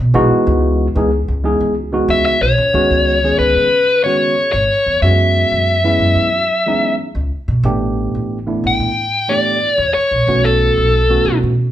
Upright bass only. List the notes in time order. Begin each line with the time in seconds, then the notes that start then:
0.00 B2
0.14 B1
0.31 muted upright bass stroke
0.47 C#2
0.96 C#2
1.28 C#2
1.61 C#2
2.08 C#2
2.41 B1
2.58 C#2
2.74 C#2
2.90 C#2
3.38 C#2
3.56 C#3
4.53 G#1
4.70 muted upright bass stroke
4.86 E2
5.02 F#2
5.51 F#2
5.99 F#2
6.15 F#3
7.15 C#2
7.32 muted upright bass stroke
7.48 B2
7.63 A1
8.15 A1
8.64 A1
8.80 A2
9.78 E2
9.96 muted upright bass stroke
10.11 A#1
10.27 B1
10.77 B1
11.25 B1
11.43 B2